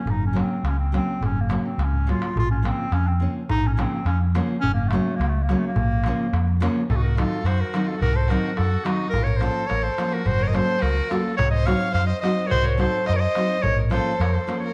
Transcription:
Already playing: clarinet C#4
0.05 fingered electric bass F#1, darbuka dum
0.11 clarinet D#4
0.23 clarinet C#4, darbuka tek
0.33 nylon-string guitar C#3 F#3 A#3 C#4, darbuka tek
0.40 clarinet C4
0.63 fingered electric bass C#2, clarinet C#4, darbuka tek
0.79 clarinet C4, darbuka tek
0.92 nylon-string guitar C#3 F#3 A#3 C#4, clarinet C4, darbuka tek
1.21 fingered electric bass F#1, darbuka dum
1.25 clarinet C#4
1.36 darbuka tek
1.41 clarinet A#3
1.49 nylon-string guitar C#3 F#3 A#3 C#4, darbuka tek
1.66 clarinet C4, darbuka tek
1.78 fingered electric bass C#2, darbuka tek
1.84 clarinet C#4
1.93 darbuka dum
2.07 nylon-string guitar C#3 F#3 A#3 C#4, clarinet F4, darbuka tek
2.22 darbuka tek
2.36 fingered electric bass A#1, clarinet F4, darbuka dum
2.51 clarinet C#4, darbuka tek
2.63 nylon-string guitar C#3 F3 A#3 C#4, clarinet C4, darbuka tek
2.92 fingered electric bass F2, clarinet C#4, darbuka tek
3.07 clarinet C4, darbuka tek
3.20 nylon-string guitar C#3 F3 A#3 C#4
3.49 fingered electric bass A#1, clarinet D#4, darbuka dum
3.65 clarinet C#4, darbuka tek
3.74 nylon-string guitar C#3 F3, clarinet C#4
3.79 nylon-string guitar A#3 C#4, clarinet C4, darbuka tek
4.05 fingered electric bass F2, clarinet C#4, darbuka tek
4.21 darbuka tek
4.35 nylon-string guitar C#3 F3 A#3 C#4, darbuka tek
4.61 fingered electric bass F#1, clarinet C#4, darbuka dum
4.74 clarinet A#3, darbuka tek
4.88 clarinet A3, darbuka tek
4.92 nylon-string guitar C#3 F#3 A#3 C#4
5.16 fingered electric bass C#2, clarinet A#3
5.21 darbuka tek
5.29 clarinet A3
5.35 darbuka tek
5.43 clarinet A#3
5.49 nylon-string guitar C#3 F#3 A#3 C#4, darbuka tek
5.58 clarinet A3
5.67 clarinet A#3
5.76 fingered electric bass A#1, darbuka dum
5.92 darbuka tek
6.04 nylon-string guitar C#3 F3 A#3 C#4, darbuka tek
6.33 fingered electric bass F2, darbuka tek
6.48 darbuka tek
6.60 nylon-string guitar C#3 F3 A#3 C#4, darbuka tek
6.76 darbuka tek
6.89 fingered electric bass C2, violin D#4 F4, clarinet A4, darbuka dum
6.94 violin D#4, clarinet F#4
7.03 violin F#4, clarinet A#4
7.16 nylon-string guitar D#3 F#3 C4 D#4, violin F4, clarinet A4, darbuka tek
7.33 darbuka tek
7.44 fingered electric bass F#2, violin F#4, clarinet C5, darbuka tek
7.58 violin F#4, clarinet A#4
7.74 nylon-string guitar D#3 F#3 C4 D#4, darbuka tek
7.86 violin F4, clarinet A4, darbuka tek
7.99 fingered electric bass C2, violin F#4, clarinet A#4, darbuka dum
8.13 violin A4, clarinet C5
8.28 nylon-string guitar D#3 F#3 C4 D#4, violin F#4, clarinet A#4, darbuka tek
8.45 darbuka tek
8.56 fingered electric bass F#2, violin F#4, clarinet A4, darbuka tek
8.85 nylon-string guitar D#3 F#3 C4 D#4, violin D#4, clarinet F#4, darbuka tek
8.99 darbuka tek
9.10 fingered electric bass A#1, violin F4, clarinet A#4
9.14 darbuka dum
9.23 violin A#4, clarinet C#5
9.37 nylon-string guitar F3, clarinet C5
9.41 nylon-string guitar A#3 C#4 F4, violin A4, darbuka tek
9.55 darbuka tek
9.67 fingered electric bass A1, violin A#4, clarinet C#5, darbuka tek
9.82 violin A4, clarinet C5
9.98 nylon-string guitar F3 A#3 C#4 F4, darbuka tek
10.12 violin F#4, clarinet A#4, darbuka tek
10.25 fingered electric bass F#1, violin F#4, clarinet C5, darbuka dum
10.40 violin A#4, clarinet C#5, darbuka tek
10.45 violin A#4 C5, clarinet D#5
10.53 nylon-string guitar F#3 A#3 C#4 F#4, violin A4, clarinet C5, darbuka tek
10.70 darbuka tek
10.82 fingered electric bass C#2, violin F#4, clarinet A#4, darbuka tek
10.97 darbuka tek
11.09 nylon-string guitar F#3 A#3 C#4 F#4, violin F4, clarinet A4, darbuka tek
11.36 fingered electric bass C2, violin F#4, clarinet C#5, darbuka dum
11.51 violin C5, clarinet D#5
11.65 nylon-string guitar F#3 C4 D#4 F#4, violin C#5, clarinet F5, darbuka tek
11.81 darbuka tek
11.93 fingered electric bass F#2, violin C5, clarinet F5, darbuka tek
12.06 violin C5, clarinet D#5
12.21 nylon-string guitar F#3 C4 D#4, violin C5, clarinet D#5, darbuka tek
12.25 nylon-string guitar F#4
12.45 violin F#4 A#4, clarinet C#5
12.51 fingered electric bass C2, clarinet C5, darbuka dum
12.63 violin A#4, clarinet C#5
12.77 nylon-string guitar F#3 C4 D#4 F#4, violin A4, clarinet C5, darbuka tek
12.95 darbuka tek
13.06 fingered electric bass F#2, violin C5, clarinet D#5, darbuka tek
13.13 violin A#4, clarinet C#5
13.19 violin C5, clarinet D#5
13.35 nylon-string guitar F#3 C4 D#4 F#4, darbuka tek
13.50 darbuka tek
13.62 fingered electric bass A#1, violin A#4, clarinet C#5, darbuka dum
13.90 nylon-string guitar F3 A#3 C#4 F4, violin A4, clarinet C5, darbuka tek
14.08 darbuka tek
14.20 fingered electric bass F2, violin A#4, clarinet C#5, darbuka tek
14.34 violin A4, clarinet C5
14.47 nylon-string guitar F3 A#3 C#4 F4, darbuka tek
14.60 clarinet C#5
14.64 violin A#4

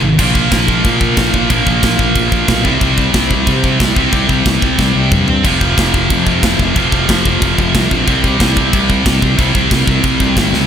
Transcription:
0.02 fingered electric bass G#1, distorted electric guitar G#2 D#3, high tom
0.18 fingered electric bass A#1, distorted electric guitar A#2 F3 A#3, kick, crash
0.35 kick
0.52 fingered electric bass A#1, kick, snare, crash
0.68 kick
0.85 fingered electric bass A#2, kick, crash
1.01 kick
1.17 fingered electric bass A#1, kick, snare, crash
1.34 fingered electric bass A#1, kick
1.49 fingered electric bass A#1, distorted electric guitar A#2 F3 A#3, kick, crash
1.67 fingered electric bass A#1, kick
1.83 fingered electric bass A#1, kick, snare, crash
1.99 fingered electric bass A#1, kick
2.15 fingered electric bass A#1, kick, crash
2.32 fingered electric bass A#1, kick
2.48 fingered electric bass B1, kick, snare, crash
2.64 fingered electric bass C2, distorted electric guitar C3 G3 C4, kick
2.81 fingered electric bass C2, kick, crash
2.98 kick
3.14 fingered electric bass C2, kick, snare, crash
3.31 kick
3.47 fingered electric bass C3, kick, crash
3.64 kick
3.80 fingered electric bass C2, kick, snare, crash
3.95 fingered electric bass C2, distorted electric guitar C3 G3 C4, kick
4.12 fingered electric bass C2, kick, crash
4.29 fingered electric bass C2, kick
4.46 fingered electric bass C2, kick, snare, crash
4.62 fingered electric bass C2, kick
4.79 fingered electric bass C2, kick, snare
4.96 fingered electric bass C2
5.12 fingered electric bass G2, kick, mid tom
5.28 fingered electric bass G2, floor tom
5.43 fingered electric bass F1, distorted electric guitar F2 C3 F3, kick, crash
5.61 kick
5.78 fingered electric bass F1, kick, snare, crash
5.94 kick
6.10 fingered electric bass F2, kick, crash
6.27 kick
6.43 fingered electric bass F1, kick, snare, crash
6.59 fingered electric bass F1, kick
6.75 fingered electric bass F1, distorted electric guitar F2 C3 F3, kick, crash
6.92 fingered electric bass F1, kick
7.09 fingered electric bass F1, kick, snare, crash
7.26 fingered electric bass F1, kick
7.42 fingered electric bass F1, kick, crash
7.58 fingered electric bass F1, kick
7.75 fingered electric bass C2, kick, snare, crash
7.91 fingered electric bass A#1, kick
8.06 fingered electric bass C2, distorted electric guitar C3 G3 C4, kick, crash
8.24 kick
8.40 fingered electric bass C2, kick, snare, crash
8.57 kick
8.73 fingered electric bass C2, kick, crash
8.90 kick
9.06 fingered electric bass C2, kick, snare, crash
9.22 fingered electric bass C2, kick
9.37 fingered electric bass C2, distorted electric guitar C3 G3 C4, kick, crash
9.55 fingered electric bass C2, kick
9.71 fingered electric bass C2, kick, snare, crash
9.87 fingered electric bass C2, kick
10.04 fingered electric bass C2, kick, crash
10.20 fingered electric bass C2, kick
10.36 fingered electric bass G1, kick, snare, crash
10.53 fingered electric bass C#2, snare

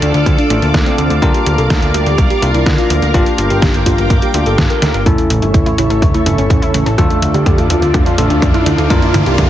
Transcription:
Already playing: tine electric piano A3 D4 F4 A4, string machine A4 D5 F5 D6
0.02 analog synth bass D2, analog synth lead D4, closed hi-hat
0.14 analog synth bass D2, closed hi-hat
0.26 analog synth bass D2, kick, closed hi-hat
0.38 analog synth lead D4, closed hi-hat
0.50 analog synth bass A1, tine electric piano A3 D4 F4 A4, closed hi-hat
0.62 analog synth bass D2, analog synth lead A#3, closed hi-hat
0.74 analog synth bass D2, kick, snare, closed hi-hat
0.86 analog synth lead C4, closed hi-hat
0.98 analog synth bass D2, closed hi-hat
1.10 analog synth bass D2, closed hi-hat
1.22 analog synth bass D2, tine electric piano A#3 D4 F4 A#4, analog synth lead G4, string machine A#4 D5 D6, kick, closed hi-hat
1.34 closed hi-hat
1.46 analog synth bass D2, closed hi-hat
1.58 analog synth bass C2, analog synth lead A4, closed hi-hat
1.70 analog synth bass D2, kick, snare, closed hi-hat
1.82 analog synth bass D2, closed hi-hat
1.94 analog synth bass D2, analog synth lead G4, closed hi-hat
2.06 analog synth bass D2, closed hi-hat
2.18 analog synth bass C2, kick, closed hi-hat
2.30 analog synth lead G4, closed hi-hat
2.42 analog synth bass C2, tine electric piano A#3 D4 F4 A#4, closed hi-hat
2.54 analog synth bass C2, analog synth lead E4, closed hi-hat
2.66 analog synth bass D2, kick, snare, closed hi-hat
2.78 analog synth lead F4, closed hi-hat
2.90 analog synth bass D2, closed hi-hat
3.02 analog synth bass D2, closed hi-hat
3.14 analog synth bass G1, tine electric piano A#3 D4 F4 G4, analog synth lead F4, string machine G5 D6, kick, closed hi-hat
3.26 closed hi-hat
3.38 analog synth bass G1, closed hi-hat
3.50 analog synth bass G1, analog synth lead G4, closed hi-hat
3.62 analog synth bass G1, kick, snare, closed hi-hat
3.74 analog synth bass G1, closed hi-hat
3.86 analog synth bass G1, analog synth lead F4, kick, closed hi-hat
3.98 analog synth bass G1, closed hi-hat
4.10 analog synth bass G1, kick, closed hi-hat
4.22 analog synth lead G4, closed hi-hat
4.34 analog synth bass D2, tine electric piano A#3 D4 F4 G4, closed hi-hat
4.46 analog synth bass G1, analog synth lead A4, closed hi-hat
4.58 analog synth bass G1, kick, snare, closed hi-hat
4.70 analog synth lead A#4, closed hi-hat
4.82 analog synth bass D2, snare, closed hi-hat
4.94 analog synth bass G1, closed hi-hat
5.06 analog synth bass A1, synth arpeggio sound C#3, tine electric piano A3 C#4 E4 A4, analog synth lead E4, string machine A4 C#5 E5 C#6, kick, closed hi-hat, mid tom, riser
5.18 synth arpeggio sound A3, closed hi-hat
5.30 analog synth bass A1, synth arpeggio sound C#3, closed hi-hat
5.42 analog synth bass G1, synth arpeggio sound C#4, analog synth lead E4, closed hi-hat
5.54 analog synth bass A1, synth arpeggio sound C#3, kick, closed hi-hat, mid tom
5.66 analog synth bass A1, synth arpeggio sound E4, closed hi-hat
5.78 analog synth bass A1, synth arpeggio sound C#3, analog synth lead E4, closed hi-hat
5.90 analog synth bass A1, synth arpeggio sound A4, closed hi-hat
6.02 analog synth bass G1, synth arpeggio sound C#3, kick, closed hi-hat, mid tom
6.14 synth arpeggio sound A3, analog synth lead E4, closed hi-hat
6.26 analog synth bass G1, synth arpeggio sound C#3, tine electric piano A3 C#4 E4 A4, closed hi-hat
6.38 analog synth bass G1, synth arpeggio sound C#4, analog synth lead C#4, closed hi-hat
6.50 analog synth bass A1, synth arpeggio sound C#3, kick, closed hi-hat, mid tom
6.62 analog synth lead C#4, synth arpeggio sound E4, closed hi-hat
6.74 analog synth bass A1, synth arpeggio sound C#3, closed hi-hat
6.86 analog synth bass A1, synth arpeggio sound A4, closed hi-hat
6.98 analog synth bass D2, synth arpeggio sound D3, tine electric piano A3 D4 F4 A4, analog synth lead F4, string machine D5 F5 D6, kick, closed hi-hat, mid tom
7.10 synth arpeggio sound A3, closed hi-hat
7.22 analog synth bass D2, synth arpeggio sound D3, closed hi-hat
7.34 analog synth bass D2, synth arpeggio sound D4, analog synth lead G4, closed hi-hat
7.46 analog synth bass D2, synth arpeggio sound D3, kick, closed hi-hat, mid tom
7.58 analog synth bass D2, synth arpeggio sound F4, closed hi-hat
7.70 analog synth bass D2, synth arpeggio sound D3, analog synth lead F4, closed hi-hat
7.82 analog synth bass D2, synth arpeggio sound A4, closed hi-hat
7.94 analog synth bass D2, synth arpeggio sound D3, kick, closed hi-hat, mid tom
8.06 synth arpeggio sound A3, analog synth lead F4, closed hi-hat
8.18 analog synth bass A1, synth arpeggio sound D3, tine electric piano A3 D4 F4 A4, closed hi-hat
8.30 analog synth bass D2, analog synth lead D4, synth arpeggio sound D4, closed hi-hat
8.42 analog synth bass D2, synth arpeggio sound D3, kick, closed hi-hat, mid tom
8.54 analog synth lead E4, synth arpeggio sound F4, closed hi-hat
8.66 analog synth bass D2, synth arpeggio sound D3, closed hi-hat
8.78 analog synth bass D2, synth arpeggio sound A4, closed hi-hat
8.90 analog synth bass D2, synth arpeggio sound D3, tine electric piano A#3 D4 F4 A#4, analog synth lead F4, string machine A#4, kick, closed hi-hat, mid tom
9.02 synth arpeggio sound A#3, closed hi-hat
9.14 analog synth bass D2, synth arpeggio sound D3, closed hi-hat, mid tom
9.26 analog synth bass C2, synth arpeggio sound D4, analog synth lead G4, closed hi-hat
9.38 analog synth bass D2, synth arpeggio sound D3, kick, closed hi-hat, mid tom

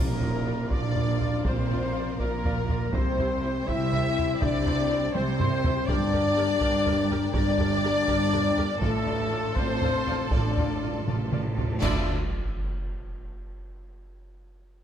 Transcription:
Already playing: cello section A#2, french horn section A#3, string section F4 A#4 D5 F5, violin section A#4, trumpet section A#4, flute section A#4, impact
0.00 double bass section A#1
0.21 viola section F4 D5, taiko low
0.46 viola section F4 D5
0.71 double bass section A#1, cello section A#2, french horn section D4, viola section F4 D5, violin section D5, trumpet section D5, flute section D5, taiko
0.95 viola section F4 D5, taiko low
1.20 viola section F4 D5, taiko low
1.44 double bass section A#1, cello section A#2, french horn section C4, viola section F4 D5, violin section C5, flute section C5, trumpet section C5, taiko
1.70 viola section F4 D5, taiko low
1.95 viola section F4 D5
2.19 double bass section A#1, cello section A#2, french horn section A#3, viola section F4 D5, violin section A#4, trumpet section A#4, flute section A#4, taiko
2.44 viola section F4 D5, taiko low
2.69 viola section F4 D5, taiko low
2.93 double bass section C2, cello section C3, french horn section C4, viola section E4 C5, string section E4 G4 C5 G5, violin section C5, trumpet section C5, flute section C5, taiko
3.19 viola section E4 C5, taiko low
3.43 viola section E4 C5
3.66 double bass section C2, cello section C3, viola section E4 C5, french horn section E4, violin section E5, trumpet section E5, flute section E5, taiko
3.92 viola section E4 C5, taiko low
4.17 viola section E4 C5, taiko low
4.40 double bass section C2, cello section C3, french horn section D4, viola section E4 C5, violin section D5, trumpet section D5, flute section D5, taiko
4.66 viola section E4 C5, taiko low
4.90 viola section E4 C5
5.13 double bass section C2, cello section C3, french horn section C4, viola section E4 C5, trumpet section C5, violin section C5, flute section C5, taiko high
5.39 viola section E4 C5, taiko low-mid
5.64 viola section E4 C5, taiko low
5.87 double bass section G1, cello section G2, french horn section D4, string section D4 A#4, viola section G4 A#4, trumpet section D5, violin section D5, flute section D5, taiko
6.12 viola section G4 A#4, taiko low
6.36 viola section G4 A#4
6.60 double bass section G1, cello section G2, viola section G4 A#4, taiko
6.85 viola section G4 A#4, taiko low
7.10 viola section G4 A#4, taiko low
7.34 double bass section G1, cello section G2, french horn section D4, viola section G4 A#4, flute section D5, trumpet section D5, violin section D5, taiko
7.58 viola section G4 A#4, taiko low
7.83 viola section G4 A#4
8.07 double bass section G1, cello section G2, viola section G4 A#4, taiko
8.32 viola section G4 A#4, taiko low
8.57 viola section G4 A#4, taiko low
8.81 double bass section A1, cello section A2, french horn section A3, viola section F4 D5, string section F4 A4 A5, violin section A4, trumpet section A4, flute section A4, taiko
8.98 timpani A2
9.06 viola section F4 D5, taiko low
9.27 timpani A2
9.31 timpani A2, viola section F4 D5
9.42 timpani A2
9.49 timpani A2
9.55 double bass section A1, timpani A2, cello section A2, french horn section C4, viola section F4 D5, flute section C5, trumpet section C5, violin section C5, taiko
9.65 timpani A2
9.72 timpani A2
9.81 timpani A2, viola section F4 D5, taiko low
9.89 timpani A2
9.96 timpani A2
10.04 timpani A2, viola section F4 D5, taiko low
10.11 timpani A2
10.19 timpani A2
10.27 timpani A2
10.31 double bass section A1, cello section A2, timpani A2, french horn section D4, viola section F4 D5, violin section D5, trumpet section D5, flute section D5, taiko
10.42 timpani A2
10.50 timpani A2
10.57 timpani A2, viola section F4 D5, taiko low
10.65 timpani A2
10.72 timpani A2
10.81 timpani A2, viola section F4 D5
10.88 timpani A2
10.94 timpani A2
11.02 timpani A2
11.07 double bass section A1, cello section A2, timpani A2, viola section F4 D5, taiko mid
11.17 timpani A2
11.25 timpani A2
11.32 timpani A2, viola section F4 D5, taiko mid
11.40 timpani A2
11.48 timpani A2
11.55 timpani A2, viola section F4 D5, taiko low
11.63 timpani A2
11.71 timpani A2
11.81 double bass section D2, timpani D3, cello section D3, french horn section D4, string section E4 F4 A4 A5, viola section F4 E5, violin section D5, trumpet section D5, flute section D5, concert bass drum, taiko, crash, sub drop

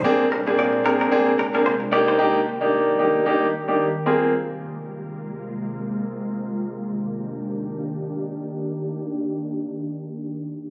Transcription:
Already playing: ambient pad A#3
0.04 ambient pad C3 G#3 D4, grand piano A#3 C4 D4 G#4
0.32 clean electric guitar D4 A#4
0.46 grand piano A#3 C4 D4 G#4, clean electric guitar C4 G#4
0.59 clean electric guitar F4 D5
0.84 grand piano A#3 C4 D4 G#4, clean electric guitar D4 A#4
1.01 clean electric guitar D4 A#4
1.11 grand piano A#3 C4 D4 G#4, clean electric guitar C4 G#4
1.39 clean electric guitar D4 A#4
1.54 grand piano A#3 C4 D4 G#4, clean electric guitar D4 A#4
1.66 clean electric guitar F4 C5
1.92 ambient pad D#3 G3 G4, grand piano A#3 D4 D#4 G4, clean electric guitar G4 D5
2.08 clean electric guitar D#4 C5
2.18 grand piano A#3 D4 D#4 G4
2.61 grand piano A#3 D4 D#4 G4
2.99 grand piano A#3 D4 D#4 G4
3.26 grand piano A#3 D4 D#4 G4
3.68 grand piano A#3 D4 D#4 G4
4.06 ambient pad C3 G#3 A#3 F4, grand piano A#3 C4 F4 G#4
6.47 ambient pad D#3 A#3 D4 G4

